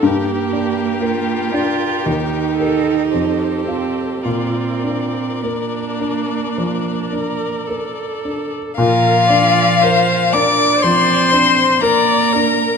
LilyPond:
<<
  \new Staff \with { instrumentName = "Violin" } { \time 4/4 \key bes \major \tempo 4 = 57 bes'2. c''4 | d''1 | f''4. d'''8 c'''4 bes''4 | }
  \new Staff \with { instrumentName = "Viola" } { \time 4/4 \key bes \major g'4 f'4 g'8 a'8 g'4 | f'4 d'4. bes'8 a'4 | bes'8 d''8 c''8 bes'8 d''8 c''8 d''8 bes'8 | }
  \new Staff \with { instrumentName = "Violin" } { \time 4/4 \key bes \major g'2. a'4 | bes'1 | f'4. d''8 c''4 bes'4 | }
  \new Staff \with { instrumentName = "Grand piano" } { \time 4/4 \key bes \major g,8 d'8 bes'8 d'8 ees,8 <g' bes'>8 f,8 <f' a'>8 | bes,8 d'8 bes'8 d'8 f8 d'8 bes'8 d'8 | bes,8 d'8 bes'8 d'8 f8 d'8 bes'8 d'8 | }
  \new Staff \with { instrumentName = "Cello" } { \time 4/4 \key bes \major bes4. f'8 ees'4. c'8 | c'4 bes2 r4 | f4. d'8 c'4 bes4 | }
>>